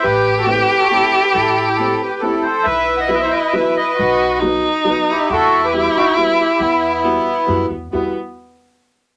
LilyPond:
<<
  \new Staff \with { instrumentName = "Accordion" } { \time 3/4 \key e \minor \tempo 4 = 137 << { b'8. a'16 b'8. a'16 a'8. b'16 | a'8. g'16 a'8 b'8 a'8 c''8 | e''8. fis''16 e''32 dis''32 e''16 dis''8 e''8 dis''8~ | dis''4 r4. g'8 |
a'8. b'16 g'8 fis'8 e'8 g'8 | e'2~ e'8 r8 | b8 r2 r8 | } \\ { g'8. fis'16 g'8. fis'16 e'8. g'16 | e'8. e'16 e'8 g'8 e'8 a'8 | b'8. dis''16 b'16 c''16 b'8 b'8 b'8~ | b'4 r4. e'8 |
fis'8. g'16 e'8 dis'8 b8 e'8 | b2~ b8 r8 | r2. | } >> }
  \new Staff \with { instrumentName = "Violin" } { \time 3/4 \key e \minor g'2.~ | g'2~ g'8 r8 | e'2. | fis'4 dis'2 |
e'2.~ | e'4 b4. r8 | b8 r2 r8 | }
  \new Staff \with { instrumentName = "Upright piano" } { \time 3/4 \key e \minor r4 <a c' e' g'>8 r8 <a c' e' g'>8 r8 | r4 <a c' e' g'>8 r8 <a c' e' g'>8 r8 | r4 <fis b e' fis'>8 r8 <fis b e' fis'>8 r8 | r4 <fis b dis' fis'>8 r8 <fis b dis' fis'>8 r8 |
r4 <g b e' fis'>8 r8 <g b e' fis'>8 r8 | r4 <g b e' fis'>8 r8 <g b e' fis'>8 r8 | <g b e' fis'>8 r2 r8 | }
  \new Staff \with { instrumentName = "Upright bass" } { \clef bass \time 3/4 \key e \minor a,,2 r4 | a,,2 r4 | b,,2 r4 | b,,2 r4 |
e,2 r4 | e,2 fis,8 e,8 | e,8 r2 r8 | }
>>